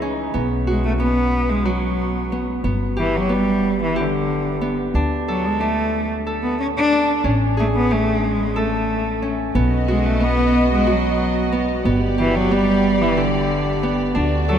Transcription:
0.00 0.31 C#2 medium
0.00 0.31 C#3 medium
0.00 0.32 E3 medium
0.00 2.92 C#4 medium
0.00 0.32 D#4 medium
0.00 1.31 G#4 medium
0.34 2.60 B1 medium
0.34 0.99 B3 medium
0.67 0.84 G#3 medium
0.67 1.65 F#4 medium
0.85 0.92 A3 medium
1.00 2.32 B3 medium
1.00 1.51 B3 medium
1.49 1.68 G#3 medium
1.65 2.40 F#3 medium
1.65 3.03 F#4 medium
2.32 2.64 B3 medium
2.64 4.90 G1 medium
2.64 3.29 B3 medium
2.97 3.18 E3 medium
2.97 3.95 G4 medium
3.16 3.34 F#3 medium
3.29 3.81 G3 medium
3.29 4.61 B3 medium
3.83 4.02 E3 medium
3.96 6.31 G4 medium
4.01 4.72 D3 medium
4.61 7.72 B3 medium
4.94 7.20 D2 medium
4.94 5.60 D4 medium
5.28 5.47 F#3 medium
5.28 6.26 A4 medium
5.46 5.61 G#3 medium
5.60 6.09 A3 medium
5.60 6.92 D4 medium
6.27 7.63 A4 medium
6.43 6.58 B3 medium
6.59 6.67 C#4 medium
6.77 7.22 D4 medium
6.92 7.30 D4 medium
7.24 9.50 A1 medium
7.24 7.90 C#4 medium
7.57 7.67 A3 medium
7.57 8.62 G#4 medium
7.76 7.93 B3 medium
7.91 8.26 A3 medium
7.91 9.22 C#4 medium
8.24 8.59 G#3 medium
8.56 9.31 A3 medium
8.56 10.76 A4 medium
9.22 12.12 C#4 medium
9.54 11.81 B1 medium
9.54 11.82 B3 medium
9.54 10.20 B3 medium
9.54 11.83 F#4 medium
9.54 11.83 D#5 medium
9.88 10.08 G#3 medium
9.88 10.87 F#4 medium
10.06 10.25 A3 medium
10.20 11.52 B3 medium
10.20 10.71 B3 medium
10.73 10.93 G#3 medium
10.87 12.24 F#4 medium
10.92 11.63 F#3 medium
11.52 11.85 B3 medium
11.83 14.12 G1 medium
11.83 14.12 B3 medium
11.83 12.51 B3 medium
11.83 14.12 G4 medium
11.83 14.13 D5 medium
12.18 12.37 E3 medium
12.18 13.16 G4 medium
12.35 12.53 F#3 medium
12.51 13.03 G3 medium
12.51 13.83 B3 medium
13.01 13.19 E3 medium
13.17 13.91 D3 medium
13.17 14.59 G4 medium
13.83 14.59 B3 medium
14.15 14.59 D2 medium
14.15 14.59 A3 medium
14.15 14.59 D4 medium
14.15 14.59 F#4 medium
14.15 14.59 D5 medium
14.49 14.59 F#3 medium
14.49 14.59 A4 medium

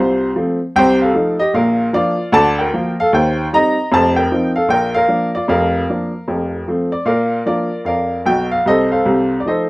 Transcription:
0.00 0.29 C2 medium
0.00 0.29 C3 medium
0.00 0.34 F4 soft
0.00 0.30 C5 medium
0.36 0.57 F3 medium
0.36 0.57 A3 soft
0.36 0.58 C4 soft
0.76 1.09 C2 medium
0.76 1.09 C3 medium
0.76 1.00 C5 loud
0.76 0.96 G5 loud
1.02 1.38 A4 medium
1.02 1.34 F5 medium
1.14 1.35 F3 soft
1.14 1.36 A3 soft
1.14 1.37 D#4 soft
1.39 1.53 G4 medium
1.39 1.52 D#5 medium
1.54 1.87 A#1 medium
1.54 1.87 A#2 medium
1.54 1.92 A#4 medium
1.54 1.88 F5 medium
1.93 2.15 F3 medium
1.93 2.16 A#3 soft
1.93 2.16 D4 soft
1.93 2.31 F4 medium
1.93 2.27 D5 loud
2.32 2.66 D2 medium
2.32 2.66 D3 medium
2.32 2.57 D5 medium
2.32 2.54 A5 loud
2.59 2.96 A#4 medium
2.59 2.92 G5 medium
2.73 2.95 F3 medium
2.73 2.95 A#3 medium
2.73 2.95 F4 medium
3.00 3.13 A4 medium
3.00 3.11 F5 medium
3.13 3.46 D#2 medium
3.13 3.46 D#3 medium
3.13 3.50 C5 medium
3.13 3.47 G5 medium
3.53 3.74 G3 soft
3.53 3.75 C4 soft
3.53 3.75 D#4 medium
3.53 3.90 D#5 medium
3.53 3.87 A#5 loud
3.92 4.25 F1 medium
3.92 4.25 F2 medium
3.92 4.16 C5 medium
3.92 4.14 A5 loud
4.16 4.54 A#4 medium
4.16 4.50 G5 medium
4.32 4.53 F3 soft
4.32 4.53 C4 medium
4.32 4.53 D#4 soft
4.56 4.70 A4 medium
4.56 4.68 F5 medium
4.68 5.03 A#1 medium
4.68 5.03 A#2 medium
4.68 4.94 A#4 medium
4.68 4.91 G5 loud
4.94 5.32 A#4 medium
4.94 5.28 F5 loud
5.08 5.30 F3 soft
5.08 5.30 A#3 soft
5.08 5.31 D4 medium
5.35 5.49 F4 medium
5.35 5.47 D5 medium
5.48 5.82 F1 medium
5.48 5.83 F2 medium
5.48 6.64 A#4 medium
5.48 6.50 F5 medium
5.89 6.11 F3 soft
5.89 6.11 A#3 soft
5.89 6.11 D4 soft
6.28 6.62 F1 medium
6.28 6.61 F2 medium
6.68 6.89 F3 soft
6.68 6.90 A3 soft
6.68 6.90 C4 soft
6.92 7.05 D5 medium
7.05 7.40 A#2 medium
7.05 7.44 A#4 medium
7.05 7.44 D5 medium
7.05 7.40 F5 medium
7.46 7.68 F3 soft
7.46 7.68 A#3 soft
7.46 7.68 D4 soft
7.46 7.84 F4 medium
7.46 7.84 A#4 medium
7.46 7.80 D5 medium
7.85 8.19 F2 soft
7.85 8.24 A#4 medium
7.85 8.24 D5 medium
7.85 8.20 F5 medium
8.26 8.57 B1 medium
8.26 8.57 B2 medium
8.26 8.47 G5 medium
8.52 8.64 F5 medium
8.66 8.97 C2 medium
8.66 8.97 C3 medium
8.66 8.90 A4 medium
8.66 8.90 C5 medium
8.66 8.88 D#5 medium
8.92 9.37 A4 medium
8.92 9.37 C5 medium
8.92 9.33 F5 medium
9.05 9.37 C2 medium
9.05 9.37 C3 medium
9.40 9.45 D5 medium
9.46 9.67 F3 soft
9.46 9.67 A3 soft
9.46 9.67 D#4 soft
9.46 9.70 A4 medium
9.46 9.70 C5 medium
9.46 9.70 D#5 medium

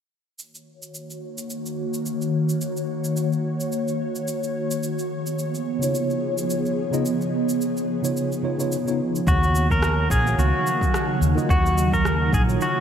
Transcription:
0.37 4.78 D#3 medium
0.37 4.78 A#3 medium
0.37 4.78 F#4 medium
0.37 9.23 C#5 medium
0.37 cabasa soft
0.55 cabasa soft
0.82 cabasa medium
0.95 cabasa soft
1.10 cabasa soft
1.38 cabasa medium
1.50 cabasa soft
1.66 cabasa soft
1.94 cabasa medium
2.06 cabasa medium
2.22 cabasa soft
2.49 cabasa medium
2.61 cabasa soft
2.77 cabasa soft
3.04 cabasa medium
3.17 cabasa medium
3.33 cabasa soft
3.60 cabasa medium
3.72 cabasa medium
3.88 cabasa soft
4.16 cabasa medium
4.28 cabasa medium
4.43 cabasa soft
4.71 cabasa medium
4.83 9.23 F3 medium
4.83 9.23 B3 medium
4.83 9.23 G#4 medium
4.83 cabasa medium
4.99 cabasa soft
5.27 cabasa medium
5.39 cabasa medium
5.55 cabasa soft
5.79 6.88 C#3 medium
5.79 6.88 B3 medium
5.79 6.89 D#4 medium
5.79 6.90 F4 medium
5.79 cabasa medium
5.84 6.90 C#5 medium
5.95 cabasa medium
6.10 cabasa soft
6.38 cabasa medium
6.50 cabasa medium
6.66 cabasa soft
6.91 7.08 C#3 medium
6.91 7.08 B3 medium
6.91 7.09 D#4 medium
6.91 7.09 F4 medium
6.91 7.09 D#5 loud
6.91 cabasa medium
7.06 cabasa medium
7.21 cabasa soft
7.49 cabasa medium
7.61 cabasa medium
7.77 cabasa soft
8.02 8.40 C#3 medium
8.02 8.40 B3 medium
8.02 8.41 D#4 medium
8.02 8.41 F4 medium
8.02 8.41 C#5 medium
8.02 cabasa medium
8.17 cabasa medium
8.32 cabasa soft
8.43 8.55 C#3 medium
8.43 8.55 B3 medium
8.43 8.56 D#4 medium
8.43 8.56 F4 medium
8.43 8.56 C#5 medium
8.58 8.75 C#3 medium
8.58 8.75 B3 medium
8.58 8.75 D#4 medium
8.58 8.75 F4 medium
8.58 8.76 C#5 medium
8.58 cabasa medium
8.72 cabasa medium
8.86 9.25 C#3 medium
8.86 9.25 B3 medium
8.86 9.25 D#4 medium
8.86 9.26 F4 medium
8.86 9.26 C#5 medium
8.86 cabasa soft
9.16 cabasa medium
9.27 10.07 D#2 medium
9.27 12.80 C#3 medium
9.27 12.80 F#3 medium
9.27 12.80 A#3 medium
9.27 12.80 D#4 medium
9.27 9.68 F#4 medium
9.27 kick loud
9.27 cabasa soft
9.43 cabasa soft
9.55 cabasa medium
9.70 10.08 A#4 loud
9.70 kick medium
9.70 cabasa soft
9.82 cross-stick loud
9.82 cabasa soft
10.10 10.34 A#1 medium
10.10 10.39 G#4 medium
10.10 kick medium
10.10 cabasa medium
10.24 11.32 D#3 medium
10.24 11.33 A#3 medium
10.24 11.34 F#4 medium
10.24 11.33 F5 medium
10.24 cabasa soft
10.29 11.35 C#5 medium
10.38 10.51 C#2 medium
10.38 11.18 F#4 medium
10.38 cabasa soft
10.67 cabasa medium
10.81 kick medium
10.81 cabasa soft
10.94 cross-stick loud
10.94 cabasa soft
11.21 11.34 D#2 medium
11.21 cabasa medium
11.35 11.52 D#3 medium
11.35 11.53 A#3 medium
11.35 11.53 F4 medium
11.35 11.53 F#4 medium
11.35 11.53 D#5 loud
11.35 cabasa soft
11.49 12.29 D#2 medium
11.49 11.95 F#4 medium
11.49 kick loud
11.49 cabasa soft
11.66 cabasa soft
11.78 cabasa medium
11.93 12.34 A#4 medium
11.93 kick medium
11.93 cabasa soft
12.05 cross-stick medium
12.05 cabasa soft
12.32 12.56 A#1 medium
12.32 12.41 G#4 medium
12.32 kick loud
12.32 cabasa medium
12.46 12.80 D#3 medium
12.46 12.80 A#3 medium
12.46 12.80 F4 medium
12.46 12.80 F#4 medium
12.46 12.80 C#5 medium
12.46 cabasa soft
12.61 12.80 F#4 medium
12.61 cabasa soft

